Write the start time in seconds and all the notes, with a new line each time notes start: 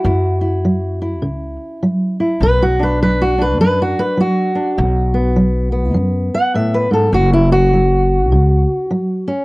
Already playing: F#4
0.04 F#2 E4
0.41 E4
0.65 F#3
1.02 E4
1.22 C#2 C#3
1.83 F#3
2.20 E4
2.40 B1 B2 B4
2.62 F#4
2.79 D4 B4
3.02 F#3 B4
3.22 F#4
3.38 D4 B4
3.59 F#2 F#3 B4
3.82 F#4
3.99 B4
4.17 F#3 F#4
4.55 D4
4.78 B1 B2
5.14 B3
5.36 F#3
5.72 B3
5.94 F#2 F#3
6.34 F#5
6.54 A2 E5
6.74 B4
6.91 G#2 A4
7.12 F#1 F#2 F#4
7.33 E4
7.52 F#4
7.73 F#3
8.30 C#2 C#3
8.91 F#3
9.28 C#4